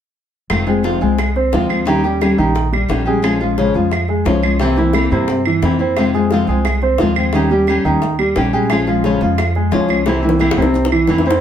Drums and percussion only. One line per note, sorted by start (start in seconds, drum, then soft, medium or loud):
0.50 high bongo medium
0.50 claves medium
0.68 high bongo soft
0.84 high bongo medium
1.19 high bongo medium
1.19 claves medium
1.36 high bongo soft
1.53 high bongo medium
1.53 low bongo medium
1.70 high bongo soft
1.70 claves medium
1.87 high bongo medium
2.05 high bongo soft
2.21 high bongo medium
2.21 claves medium
2.56 high bongo medium
2.73 high bongo soft
2.73 claves medium
2.90 high bongo medium
2.90 low bongo medium
3.24 high bongo medium
3.24 claves medium
3.41 high bongo soft
3.58 high bongo medium
3.92 high bongo medium
3.92 claves medium
4.08 high bongo soft
4.26 high bongo medium
4.26 low bongo medium
4.43 high bongo soft
4.43 claves medium
4.60 high bongo medium
4.76 high bongo soft
4.93 high bongo medium
4.93 claves medium
5.28 high bongo medium
5.45 high bongo soft
5.45 claves medium
5.63 high bongo medium
5.63 low bongo medium
5.96 high bongo medium
5.96 claves medium
6.14 high bongo soft
6.30 high bongo medium
6.65 high bongo medium
6.65 claves medium
6.82 high bongo soft
6.98 high bongo medium
6.98 low bongo medium
7.16 high bongo soft
7.16 claves medium
7.33 high bongo medium
7.50 high bongo soft
7.67 high bongo soft
7.67 claves medium
8.02 high bongo medium
8.19 high bongo soft
8.19 claves medium
8.36 high bongo medium
8.36 low bongo medium
8.70 high bongo medium
8.70 claves medium
8.87 high bongo soft
9.04 high bongo medium
9.38 high bongo medium
9.38 claves medium
9.55 high bongo soft
9.72 high bongo medium
9.72 low bongo medium
9.89 high bongo soft
9.89 claves medium
10.06 high bongo medium
10.29 low bongo medium
10.40 high bongo medium
10.40 claves medium
10.51 high bongo loud
10.62 low bongo medium
10.74 low bongo medium
10.85 low bongo medium
10.92 claves medium
11.07 low bongo medium
11.18 low bongo medium
11.30 low bongo medium